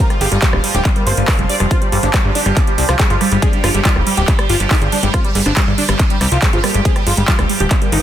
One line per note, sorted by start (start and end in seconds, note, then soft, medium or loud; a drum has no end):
0.00 8.02 F3 medium
0.00 1.73 F4 medium
0.10 0.16 G3 medium
0.10 cross-stick soft
0.10 closed hi-hat soft
0.21 0.27 G1 medium
0.21 0.26 G4 medium
0.21 0.25 G#4 medium
0.21 open hi-hat loud
0.32 0.38 G1 medium
0.32 0.37 G3 medium
0.32 0.36 G#3 medium
0.32 closed hi-hat soft
0.42 0.47 G3 loud
0.42 0.48 G4 medium
0.42 kick loud
0.42 clap loud
0.42 closed hi-hat medium
0.53 0.59 D1 medium
0.53 0.59 G3 medium
0.53 0.56 G#3 medium
0.53 cross-stick medium
0.64 0.66 G3 medium
0.64 0.69 G3 medium
0.64 open hi-hat loud
0.74 0.81 D1 medium
0.74 0.79 G3 medium
0.74 0.80 G4 medium
0.74 closed hi-hat medium
0.85 0.91 G3 medium
0.85 kick loud
0.85 cross-stick soft
0.85 clap medium
0.85 closed hi-hat medium
0.96 1.01 G3 medium
0.96 1.39 A#3 medium
0.96 closed hi-hat soft
1.07 1.13 G1 medium
1.07 1.12 C5 medium
1.07 open hi-hat loud
1.17 1.23 G1 medium
1.17 1.23 G3 medium
1.17 closed hi-hat soft
1.28 1.31 G#3 medium
1.28 1.34 D5 medium
1.28 kick loud
1.28 cross-stick medium
1.28 clap loud
1.28 open hi-hat medium
1.39 1.45 F1 medium
1.39 1.44 G3 medium
1.39 1.41 G4 medium
1.39 closed hi-hat soft
1.49 1.54 G3 medium
1.49 1.55 D5 medium
1.49 open hi-hat loud
1.60 1.66 F1 medium
1.60 1.66 G3 medium
1.60 1.67 G4 medium
1.60 cross-stick soft
1.60 closed hi-hat medium
1.71 1.74 G3 medium
1.71 1.81 C4 medium
1.71 1.76 F4 loud
1.71 8.02 G4 medium
1.71 kick loud
1.71 cross-stick soft
1.71 closed hi-hat medium
1.82 1.87 G3 medium
1.82 closed hi-hat soft
1.92 1.98 G1 medium
1.92 1.98 G3 medium
1.92 1.97 G#4 medium
1.92 open hi-hat loud
2.03 2.09 G1 medium
2.03 2.07 G#3 medium
2.03 2.10 C4 medium
2.03 2.08 D4 loud
2.03 closed hi-hat medium
2.14 2.18 G3 loud
2.14 2.19 G3 medium
2.14 2.21 C4 medium
2.14 kick loud
2.14 cross-stick medium
2.14 clap loud
2.14 closed hi-hat medium
2.24 2.31 G1 medium
2.24 2.30 G3 medium
2.24 2.27 G#3 medium
2.24 2.31 D4 medium
2.35 2.38 G3 medium
2.35 2.41 D4 medium
2.35 2.42 D4 medium
2.35 open hi-hat loud
2.46 2.52 G1 medium
2.46 2.50 G3 medium
2.46 2.51 G3 medium
2.46 cross-stick soft
2.46 closed hi-hat medium
2.57 kick loud
2.57 clap medium
2.57 closed hi-hat medium
2.67 2.73 G3 medium
2.67 closed hi-hat soft
2.78 2.84 C2 medium
2.78 2.84 G3 medium
2.78 open hi-hat loud
2.89 2.95 C2 medium
2.89 2.94 F4 medium
2.89 cross-stick medium
2.89 closed hi-hat medium
2.99 3.05 G3 medium
2.99 3.04 G#4 medium
2.99 kick loud
2.99 clap loud
2.99 closed hi-hat medium
3.10 3.16 G1 medium
3.10 3.16 F4 loud
3.10 3.13 G#4 medium
3.10 closed hi-hat soft
3.21 3.26 G3 medium
3.21 3.23 G3 medium
3.21 cross-stick soft
3.21 open hi-hat loud
3.32 3.38 G1 medium
3.32 3.37 G3 medium
3.32 3.38 G#3 medium
3.32 closed hi-hat medium
3.42 3.45 G3 medium
3.42 4.02 D4 loud
3.42 3.48 G#4 medium
3.42 kick loud
3.42 closed hi-hat medium
3.53 3.58 G3 medium
3.53 closed hi-hat soft
3.64 3.70 G1 medium
3.64 3.69 F4 medium
3.64 3.68 G#4 medium
3.64 cross-stick medium
3.64 open hi-hat loud
3.74 3.81 G1 medium
3.74 3.80 G3 medium
3.74 3.79 G#3 medium
3.74 closed hi-hat medium
3.85 3.89 G3 loud
3.85 3.91 F4 loud
3.85 kick loud
3.85 clap loud
3.85 closed hi-hat medium
3.96 4.02 D1 medium
3.96 4.01 G3 medium
3.96 3.98 G#3 medium
3.96 cross-stick soft
4.07 4.12 G3 medium
4.07 4.09 G3 medium
4.07 open hi-hat loud
4.17 4.23 D1 medium
4.17 4.22 G3 medium
4.17 4.23 G4 medium
4.17 closed hi-hat medium
4.28 4.33 G3 medium
4.28 kick loud
4.28 clap medium
4.28 closed hi-hat medium
4.39 4.44 G3 medium
4.39 cross-stick medium
4.39 closed hi-hat soft
4.49 4.56 G1 medium
4.49 4.55 F4 medium
4.49 open hi-hat loud
4.60 4.66 G1 medium
4.60 4.66 G3 medium
4.60 closed hi-hat medium
4.71 4.76 D#4 medium
4.71 4.75 G#4 medium
4.71 kick loud
4.71 cross-stick soft
4.71 clap loud
4.71 open hi-hat medium
4.82 4.88 G1 medium
4.82 4.87 G3 medium
4.82 4.84 G#4 medium
4.82 closed hi-hat soft
4.92 4.95 G3 medium
4.92 4.98 D4 medium
4.92 open hi-hat loud
5.03 5.09 G1 medium
5.03 5.08 G3 medium
5.03 5.10 G#3 medium
5.03 closed hi-hat medium
5.14 5.16 G3 medium
5.14 5.24 C4 medium
5.14 5.19 F4 loud
5.14 kick loud
5.14 cross-stick medium
5.14 closed hi-hat medium
5.24 5.30 G3 medium
5.24 closed hi-hat soft
5.35 5.41 G1 medium
5.35 5.41 G3 medium
5.35 5.39 G#4 medium
5.35 open hi-hat loud
5.46 5.52 G1 medium
5.46 5.50 G#3 medium
5.46 5.53 C4 medium
5.46 5.51 D4 loud
5.46 cross-stick soft
5.46 closed hi-hat medium
5.57 5.62 G3 medium
5.57 5.61 G3 loud
5.57 5.63 C4 medium
5.57 kick loud
5.57 clap loud
5.57 closed hi-hat medium
5.67 5.73 G1 medium
5.67 5.73 G3 medium
5.67 5.70 G#3 medium
5.78 5.81 G3 medium
5.78 5.83 D4 medium
5.78 open hi-hat loud
5.89 5.95 G1 medium
5.89 5.94 G3 medium
5.89 5.93 G3 medium
5.89 cross-stick medium
5.89 closed hi-hat medium
5.99 kick loud
5.99 clap medium
5.99 closed hi-hat medium
6.10 6.16 G3 medium
6.10 closed hi-hat soft
6.21 6.27 C2 loud
6.21 6.26 G3 medium
6.21 cross-stick soft
6.21 open hi-hat loud
6.32 6.38 C2 medium
6.32 6.37 F4 medium
6.32 closed hi-hat medium
6.42 6.48 G3 medium
6.42 6.49 C4 medium
6.42 6.47 G#4 medium
6.42 kick loud
6.42 clap loud
6.42 closed hi-hat medium
6.53 6.59 G1 medium
6.53 6.60 C4 medium
6.53 6.59 F4 loud
6.53 6.56 G#4 medium
6.53 closed hi-hat soft
6.64 6.66 G3 medium
6.64 6.69 G3 medium
6.64 6.74 A#3 medium
6.64 cross-stick medium
6.64 open hi-hat loud
6.74 6.81 G1 medium
6.74 6.80 G3 medium
6.74 6.81 G#3 medium
6.74 closed hi-hat medium
6.85 6.95 C4 medium
6.85 6.91 G#4 medium
6.85 kick loud
6.85 closed hi-hat medium
6.96 7.01 G3 medium
6.96 cross-stick soft
6.96 closed hi-hat soft
7.07 7.13 G1 loud
7.07 7.12 F4 medium
7.07 7.11 G#4 medium
7.07 open hi-hat loud
7.17 7.23 G1 medium
7.17 7.23 G3 medium
7.17 7.22 G#3 medium
7.17 closed hi-hat medium
7.28 7.32 G3 loud
7.28 7.33 F4 loud
7.28 kick loud
7.28 clap loud
7.28 closed hi-hat medium
7.39 7.45 D1 medium
7.39 7.44 G3 medium
7.39 7.41 G#3 medium
7.39 cross-stick medium
7.39 closed hi-hat soft
7.49 7.52 G3 medium
7.49 7.55 G3 medium
7.49 open hi-hat loud
7.60 7.66 D1 medium
7.60 7.65 G3 medium
7.60 7.66 G4 medium
7.60 closed hi-hat medium
7.71 7.76 G3 medium
7.71 kick loud
7.71 cross-stick soft
7.71 clap medium
7.71 closed hi-hat medium
7.82 7.87 G3 medium
7.82 8.02 A#3 loud
7.82 closed hi-hat soft
7.92 7.98 G1 loud
7.92 7.98 D#4 medium
7.92 open hi-hat loud